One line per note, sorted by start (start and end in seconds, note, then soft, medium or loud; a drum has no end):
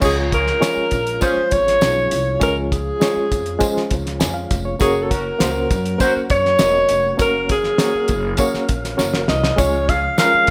0.00 0.49 C#2 medium
0.00 4.76 F3 medium
0.00 0.35 G#3 medium
0.00 4.76 G#3 medium
0.00 0.35 C#4 medium
0.00 10.50 C#4 medium
0.00 0.35 F4 medium
0.00 4.76 F4 medium
0.00 0.35 G#4 medium
0.00 0.35 C#5 loud
0.00 kick loud
0.00 crash medium
0.00 tambourine medium
0.04 0.17 G#4 medium
0.32 0.45 F4 medium
0.32 0.45 G#4 medium
0.32 1.19 A#4 loud
0.32 0.45 C#5 medium
0.32 kick medium
0.32 closed hi-hat medium
0.32 tambourine soft
0.47 snare soft
0.60 0.95 G#3 medium
0.60 0.95 C#4 medium
0.60 0.95 F4 medium
0.60 0.95 G#4 medium
0.60 0.95 C#5 medium
0.60 snare loud
0.60 closed hi-hat medium
0.60 tambourine loud
0.76 muted upright bass stroke soft
0.91 1.16 A#1 loud
0.91 kick medium
0.91 closed hi-hat medium
0.91 tambourine medium
1.07 closed hi-hat soft
1.21 1.55 G#3 medium
1.21 1.55 C#4 medium
1.21 1.41 C#4 medium
1.21 1.40 F4 medium
1.21 1.55 F4 medium
1.21 1.41 G#4 medium
1.21 1.55 G#4 medium
1.21 1.54 C5 loud
1.21 1.55 C#5 medium
1.21 kick loud
1.21 closed hi-hat medium
1.21 tambourine loud
1.36 muted upright bass stroke soft
1.51 1.76 G#1 medium
1.51 2.42 C#5 loud
1.51 kick medium
1.51 closed hi-hat medium
1.51 tambourine soft
1.67 snare soft
1.67 closed hi-hat medium
1.81 2.05 B1 medium
1.81 2.15 G#3 medium
1.81 2.15 C#4 medium
1.81 2.15 F4 medium
1.81 2.16 G#4 medium
1.81 2.16 C#5 medium
1.81 snare loud
1.81 closed hi-hat medium
1.81 tambourine loud
2.11 2.35 C2 medium
2.11 closed hi-hat medium
2.11 tambourine medium
2.40 2.89 C#2 loud
2.40 2.74 G#3 medium
2.40 2.74 C#4 medium
2.40 2.74 F4 medium
2.40 2.75 G#4 medium
2.40 2.56 A#4 loud
2.40 2.75 C#5 medium
2.40 kick loud
2.40 closed hi-hat medium
2.40 tambourine medium
2.72 3.87 G#4 loud
2.72 kick medium
2.72 closed hi-hat medium
2.72 tambourine soft
3.00 3.34 G#3 medium
3.00 3.34 C#4 medium
3.00 3.35 F4 medium
3.00 3.35 G#4 medium
3.00 3.35 C#5 medium
3.00 snare loud
3.00 closed hi-hat medium
3.00 tambourine medium
3.17 muted upright bass stroke soft
3.32 3.55 F2 loud
3.32 kick medium
3.32 closed hi-hat medium
3.32 tambourine medium
3.46 closed hi-hat soft
3.59 3.93 G#3 loud
3.59 3.94 C#4 medium
3.59 3.94 F4 medium
3.59 3.94 G#4 medium
3.59 3.94 C5 medium
3.59 kick loud
3.59 closed hi-hat medium
3.59 tambourine loud
3.76 muted upright bass stroke soft
3.76 snare soft
3.90 4.23 C#2 medium
3.90 kick medium
3.90 closed hi-hat medium
3.90 tambourine soft
4.06 snare soft
4.06 closed hi-hat medium
4.20 4.45 F2 medium
4.20 4.34 G#5 medium
4.20 snare loud
4.20 closed hi-hat loud
4.20 tambourine loud
4.34 4.63 F5 medium
4.51 4.75 F1 medium
4.51 kick medium
4.51 closed hi-hat medium
4.51 tambourine medium
4.65 4.80 C#5 medium
4.79 5.28 F#1 medium
4.79 9.55 F#3 medium
4.79 5.14 A#3 medium
4.79 9.55 A#3 medium
4.79 5.14 C#4 medium
4.79 5.14 F#4 medium
4.79 7.17 F#4 medium
4.79 5.05 G#4 loud
4.79 5.14 A#4 medium
4.79 5.15 C#5 medium
4.79 kick loud
4.79 closed hi-hat medium
4.79 tambourine medium
5.03 5.12 A4 medium
5.10 5.23 C#4 medium
5.10 5.23 F#4 medium
5.10 6.00 A#4 loud
5.10 5.23 A#4 medium
5.10 kick medium
5.10 closed hi-hat medium
5.10 tambourine soft
5.39 5.64 C#2 loud
5.39 5.73 A#3 medium
5.39 5.73 C#4 medium
5.39 5.74 F#4 medium
5.39 5.74 A#4 medium
5.39 5.74 C5 medium
5.39 snare loud
5.39 closed hi-hat loud
5.39 tambourine loud
5.71 5.94 F#2 loud
5.71 kick medium
5.71 closed hi-hat medium
5.71 tambourine medium
5.86 closed hi-hat soft
5.98 6.33 A#3 medium
5.98 6.33 C#4 medium
5.98 6.20 C#4 medium
5.98 6.33 F#4 medium
5.98 6.20 F#4 medium
5.98 6.33 A#4 medium
5.98 6.19 A#4 medium
5.98 6.33 C5 medium
5.98 6.14 C5 loud
5.98 kick loud
5.98 closed hi-hat medium
5.98 tambourine medium
6.16 muted upright bass stroke soft
6.30 6.54 F#2 medium
6.30 7.16 C#5 loud
6.30 kick loud
6.30 closed hi-hat medium
6.30 tambourine medium
6.45 snare soft
6.59 6.84 E1 medium
6.59 6.93 A#3 medium
6.59 6.93 C#4 medium
6.59 6.93 F#4 medium
6.59 6.93 A#4 medium
6.59 6.94 D#5 medium
6.59 snare loud
6.59 closed hi-hat medium
6.59 tambourine loud
6.89 7.14 F1 medium
6.89 closed hi-hat medium
6.89 tambourine medium
7.17 7.67 F#1 medium
7.17 7.52 A#3 medium
7.17 7.52 C#4 medium
7.17 7.53 F#4 medium
7.17 7.53 A#4 medium
7.17 7.48 A#4 loud
7.17 7.53 C#5 loud
7.17 10.50 F5 medium
7.17 kick loud
7.17 closed hi-hat medium
7.17 tambourine medium
7.49 8.66 G#4 loud
7.49 kick medium
7.49 closed hi-hat medium
7.49 tambourine medium
7.64 snare soft
7.78 8.12 A#3 medium
7.78 8.13 C#4 medium
7.78 8.13 F#4 medium
7.78 8.13 A#4 medium
7.78 8.13 C#5 medium
7.78 snare loud
7.78 closed hi-hat loud
7.78 tambourine loud
7.95 muted upright bass stroke medium
8.08 8.33 F#1 loud
8.08 kick medium
8.08 closed hi-hat medium
8.08 tambourine medium
8.37 8.72 A#3 medium
8.37 8.72 C#4 medium
8.37 8.73 F#4 medium
8.37 8.73 A#4 medium
8.37 8.73 C#5 loud
8.37 kick loud
8.37 closed hi-hat medium
8.37 tambourine loud
8.54 muted upright bass stroke soft
8.54 snare soft
8.69 8.93 A#1 medium
8.69 kick medium
8.69 closed hi-hat medium
8.69 tambourine medium
8.84 snare soft
8.84 closed hi-hat soft
8.97 9.23 F#1 medium
8.97 9.31 A#3 medium
8.97 9.31 C#4 medium
8.97 9.32 F#4 medium
8.97 9.32 A#4 medium
8.97 9.32 C#5 medium
8.97 snare medium
8.97 tambourine loud
9.14 snare medium
9.28 9.53 C2 loud
9.28 9.62 D#5 medium
9.28 snare medium
9.28 tambourine soft
9.44 snare medium
9.56 10.06 C#2 medium
9.56 10.50 F3 medium
9.56 9.91 G#3 medium
9.56 10.50 G#3 medium
9.56 9.91 C#4 medium
9.56 9.92 F4 medium
9.56 9.92 G#4 medium
9.56 9.92 C#5 loud
9.56 9.91 C#5 loud
9.56 kick loud
9.56 closed hi-hat medium
9.56 tambourine loud
9.87 10.00 C#4 medium
9.87 10.01 F4 medium
9.87 10.01 G#4 medium
9.87 10.19 F5 loud
9.87 kick medium
9.87 closed hi-hat medium
9.87 tambourine soft
10.17 10.50 G#3 medium
10.17 10.50 C#4 medium
10.17 10.50 F4 medium
10.17 10.50 G#4 medium
10.17 10.50 A#4 medium
10.17 10.50 F5 loud
10.17 snare loud
10.17 closed hi-hat medium
10.17 tambourine loud
10.34 muted upright bass stroke soft
10.47 closed hi-hat medium